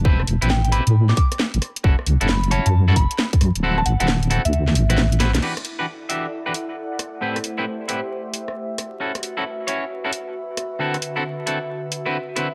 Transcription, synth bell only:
0, 0, Header, 1, 2, 480
1, 0, Start_track
1, 0, Tempo, 447761
1, 55, Time_signature, 4, 2, 24, 8
1, 13444, End_track
2, 0, Start_track
2, 0, Title_t, "Synth bell"
2, 0, Program_c, 0, 98
2, 533, Note_on_c, 0, 79, 85
2, 634, Note_off_c, 0, 79, 0
2, 688, Note_on_c, 0, 79, 77
2, 743, Note_off_c, 0, 79, 0
2, 771, Note_on_c, 0, 83, 94
2, 943, Note_off_c, 0, 83, 0
2, 1168, Note_on_c, 0, 86, 86
2, 1223, Note_off_c, 0, 86, 0
2, 1253, Note_on_c, 0, 86, 78
2, 1353, Note_off_c, 0, 86, 0
2, 2454, Note_on_c, 0, 83, 90
2, 2624, Note_off_c, 0, 83, 0
2, 2694, Note_on_c, 0, 81, 90
2, 2794, Note_off_c, 0, 81, 0
2, 2850, Note_on_c, 0, 81, 72
2, 2904, Note_off_c, 0, 81, 0
2, 3174, Note_on_c, 0, 83, 90
2, 3344, Note_off_c, 0, 83, 0
2, 4049, Note_on_c, 0, 81, 93
2, 4117, Note_off_c, 0, 81, 0
2, 4133, Note_on_c, 0, 78, 88
2, 4234, Note_off_c, 0, 78, 0
2, 4289, Note_on_c, 0, 78, 75
2, 4343, Note_off_c, 0, 78, 0
2, 4771, Note_on_c, 0, 76, 86
2, 5428, Note_off_c, 0, 76, 0
2, 13444, End_track
0, 0, End_of_file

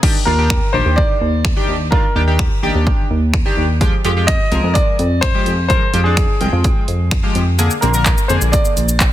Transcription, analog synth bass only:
0, 0, Header, 1, 2, 480
1, 0, Start_track
1, 0, Key_signature, -3, "major"
1, 0, Tempo, 472441
1, 30, Time_signature, 4, 2, 24, 8
1, 9274, End_track
2, 0, Start_track
2, 0, Title_t, "Analog synth bass"
2, 0, Program_c, 0, 38
2, 269, Note_on_c, 0, 39, 90
2, 612, Note_off_c, 0, 39, 0
2, 750, Note_on_c, 0, 34, 89
2, 835, Note_off_c, 0, 34, 0
2, 870, Note_on_c, 0, 39, 97
2, 1041, Note_off_c, 0, 39, 0
2, 1230, Note_on_c, 0, 39, 102
2, 1572, Note_off_c, 0, 39, 0
2, 1710, Note_on_c, 0, 39, 86
2, 2052, Note_off_c, 0, 39, 0
2, 2191, Note_on_c, 0, 39, 94
2, 2532, Note_off_c, 0, 39, 0
2, 2671, Note_on_c, 0, 34, 86
2, 2757, Note_off_c, 0, 34, 0
2, 2792, Note_on_c, 0, 39, 96
2, 2962, Note_off_c, 0, 39, 0
2, 3151, Note_on_c, 0, 39, 98
2, 3493, Note_off_c, 0, 39, 0
2, 3630, Note_on_c, 0, 39, 89
2, 3972, Note_off_c, 0, 39, 0
2, 4111, Note_on_c, 0, 41, 92
2, 4453, Note_off_c, 0, 41, 0
2, 4591, Note_on_c, 0, 36, 86
2, 4677, Note_off_c, 0, 36, 0
2, 4711, Note_on_c, 0, 41, 99
2, 4882, Note_off_c, 0, 41, 0
2, 5071, Note_on_c, 0, 41, 99
2, 5413, Note_off_c, 0, 41, 0
2, 5551, Note_on_c, 0, 41, 88
2, 5893, Note_off_c, 0, 41, 0
2, 6030, Note_on_c, 0, 41, 89
2, 6372, Note_off_c, 0, 41, 0
2, 6511, Note_on_c, 0, 36, 86
2, 6596, Note_off_c, 0, 36, 0
2, 6630, Note_on_c, 0, 41, 101
2, 6801, Note_off_c, 0, 41, 0
2, 6990, Note_on_c, 0, 41, 99
2, 7332, Note_off_c, 0, 41, 0
2, 7469, Note_on_c, 0, 41, 84
2, 7811, Note_off_c, 0, 41, 0
2, 7949, Note_on_c, 0, 34, 91
2, 8292, Note_off_c, 0, 34, 0
2, 8430, Note_on_c, 0, 41, 85
2, 8516, Note_off_c, 0, 41, 0
2, 8549, Note_on_c, 0, 34, 100
2, 8721, Note_off_c, 0, 34, 0
2, 8909, Note_on_c, 0, 34, 96
2, 9251, Note_off_c, 0, 34, 0
2, 9274, End_track
0, 0, End_of_file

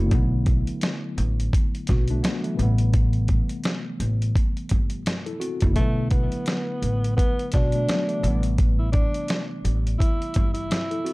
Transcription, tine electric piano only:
0, 0, Header, 1, 2, 480
1, 0, Start_track
1, 0, Tempo, 705882
1, 78, Time_signature, 4, 2, 24, 8
1, 7570, End_track
2, 0, Start_track
2, 0, Title_t, "Tine electric piano"
2, 0, Program_c, 0, 4
2, 0, Control_c, 0, 64, 127
2, 0, Note_on_c, 0, 59, 54
2, 0, Note_on_c, 0, 60, 61
2, 0, Note_on_c, 0, 64, 74
2, 0, Note_on_c, 0, 66, 76
2, 0, Note_on_c, 0, 69, 66
2, 44, Note_on_c, 0, 50, 80
2, 62, Note_on_c, 0, 54, 74
2, 80, Note_on_c, 0, 57, 74
2, 87, Control_c, 0, 64, 0
2, 88, Note_off_c, 0, 60, 0
2, 88, Note_off_c, 0, 69, 0
2, 90, Note_off_c, 0, 59, 0
2, 93, Note_off_c, 0, 66, 0
2, 98, Note_on_c, 0, 59, 86
2, 211, Note_off_c, 0, 64, 0
2, 214, Control_c, 0, 64, 127
2, 1246, Note_off_c, 0, 54, 0
2, 1255, Note_off_c, 0, 57, 0
2, 1264, Note_off_c, 0, 59, 0
2, 1291, Note_on_c, 0, 66, 68
2, 1295, Note_on_c, 0, 59, 55
2, 1421, Note_off_c, 0, 66, 0
2, 1424, Note_off_c, 0, 59, 0
2, 1430, Note_on_c, 0, 62, 81
2, 1434, Note_on_c, 0, 57, 67
2, 1517, Note_off_c, 0, 62, 0
2, 1517, Note_on_c, 0, 59, 78
2, 1520, Note_off_c, 0, 57, 0
2, 1521, Note_on_c, 0, 54, 66
2, 1654, Note_off_c, 0, 59, 0
2, 1654, Note_on_c, 0, 57, 67
2, 1656, Note_off_c, 0, 54, 0
2, 1658, Note_on_c, 0, 52, 60
2, 1714, Note_off_c, 0, 50, 0
2, 1732, Note_on_c, 0, 47, 65
2, 1741, Note_off_c, 0, 52, 0
2, 1749, Note_on_c, 0, 52, 73
2, 1767, Control_c, 0, 64, 0
2, 1767, Note_on_c, 0, 55, 69
2, 1776, Note_on_c, 0, 48, 74
2, 1785, Note_on_c, 0, 59, 94
2, 1798, Note_off_c, 0, 47, 0
2, 1875, Control_c, 0, 64, 127
2, 1886, Note_off_c, 0, 57, 0
2, 3184, Note_off_c, 0, 59, 0
2, 3577, Note_on_c, 0, 69, 69
2, 3581, Note_on_c, 0, 64, 59
2, 3646, Note_off_c, 0, 52, 0
2, 3655, Note_off_c, 0, 55, 0
2, 3660, Note_off_c, 0, 48, 0
2, 3670, Note_off_c, 0, 69, 0
2, 3672, Note_off_c, 0, 64, 0
2, 3672, Note_on_c, 0, 66, 77
2, 3676, Note_on_c, 0, 60, 61
2, 3811, Note_off_c, 0, 66, 0
2, 3814, Note_off_c, 0, 60, 0
2, 3825, Note_on_c, 0, 64, 72
2, 3829, Note_on_c, 0, 59, 54
2, 3885, Note_on_c, 0, 50, 79
2, 3903, Note_on_c, 0, 54, 77
2, 3921, Note_on_c, 0, 57, 72
2, 3925, Control_c, 0, 64, 0
2, 3930, Note_off_c, 0, 59, 0
2, 3938, Note_on_c, 0, 59, 85
2, 4039, Control_c, 0, 64, 127
2, 4052, Note_off_c, 0, 64, 0
2, 5086, Note_off_c, 0, 54, 0
2, 5095, Note_off_c, 0, 57, 0
2, 5104, Note_off_c, 0, 59, 0
2, 5131, Note_on_c, 0, 66, 67
2, 5135, Note_on_c, 0, 59, 54
2, 5261, Note_off_c, 0, 66, 0
2, 5263, Note_off_c, 0, 59, 0
2, 5270, Note_on_c, 0, 62, 75
2, 5274, Note_on_c, 0, 57, 64
2, 5357, Note_on_c, 0, 59, 75
2, 5358, Note_off_c, 0, 62, 0
2, 5359, Note_off_c, 0, 57, 0
2, 5361, Note_on_c, 0, 54, 65
2, 5493, Note_on_c, 0, 57, 66
2, 5494, Note_off_c, 0, 59, 0
2, 5496, Note_off_c, 0, 54, 0
2, 5497, Note_on_c, 0, 52, 58
2, 5554, Note_off_c, 0, 50, 0
2, 5572, Note_on_c, 0, 47, 65
2, 5582, Note_off_c, 0, 52, 0
2, 5590, Note_on_c, 0, 52, 70
2, 5606, Control_c, 0, 64, 0
2, 5608, Note_on_c, 0, 55, 70
2, 5616, Note_on_c, 0, 48, 70
2, 5625, Note_on_c, 0, 59, 91
2, 5638, Note_off_c, 0, 47, 0
2, 5725, Note_off_c, 0, 57, 0
2, 5744, Control_c, 0, 64, 127
2, 7024, Note_off_c, 0, 59, 0
2, 7418, Note_on_c, 0, 69, 67
2, 7422, Note_on_c, 0, 64, 60
2, 7487, Note_off_c, 0, 52, 0
2, 7496, Note_off_c, 0, 55, 0
2, 7500, Note_off_c, 0, 48, 0
2, 7511, Note_off_c, 0, 69, 0
2, 7512, Note_on_c, 0, 66, 74
2, 7513, Note_off_c, 0, 64, 0
2, 7516, Note_on_c, 0, 60, 62
2, 7570, Note_off_c, 0, 60, 0
2, 7570, Note_off_c, 0, 66, 0
2, 7570, End_track
0, 0, End_of_file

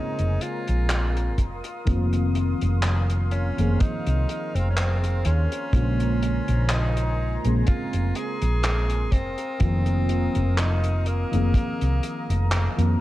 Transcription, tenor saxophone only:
0, 0, Header, 1, 2, 480
1, 0, Start_track
1, 0, Tempo, 967742
1, 928, Time_signature, 4, 2, 24, 8
1, 6451, End_track
2, 0, Start_track
2, 0, Title_t, "Tenor saxophone"
2, 0, Program_c, 0, 66
2, 0, Note_on_c, 0, 63, 104
2, 208, Note_on_c, 0, 65, 102
2, 216, Note_off_c, 0, 63, 0
2, 688, Note_off_c, 0, 65, 0
2, 1644, Note_on_c, 0, 61, 85
2, 1885, Note_on_c, 0, 63, 98
2, 1893, Note_off_c, 0, 61, 0
2, 2256, Note_on_c, 0, 60, 84
2, 2263, Note_off_c, 0, 63, 0
2, 2329, Note_off_c, 0, 60, 0
2, 2332, Note_on_c, 0, 61, 66
2, 2361, Note_on_c, 0, 60, 90
2, 2368, Note_off_c, 0, 61, 0
2, 2604, Note_on_c, 0, 61, 101
2, 2611, Note_off_c, 0, 60, 0
2, 3324, Note_on_c, 0, 63, 102
2, 3332, Note_off_c, 0, 61, 0
2, 3682, Note_off_c, 0, 63, 0
2, 3808, Note_on_c, 0, 65, 109
2, 4047, Note_on_c, 0, 68, 116
2, 4054, Note_off_c, 0, 65, 0
2, 4525, Note_on_c, 0, 60, 106
2, 4533, Note_off_c, 0, 68, 0
2, 5252, Note_on_c, 0, 63, 97
2, 5259, Note_off_c, 0, 60, 0
2, 5492, Note_on_c, 0, 58, 89
2, 5499, Note_off_c, 0, 63, 0
2, 6210, Note_off_c, 0, 58, 0
2, 6451, End_track
0, 0, End_of_file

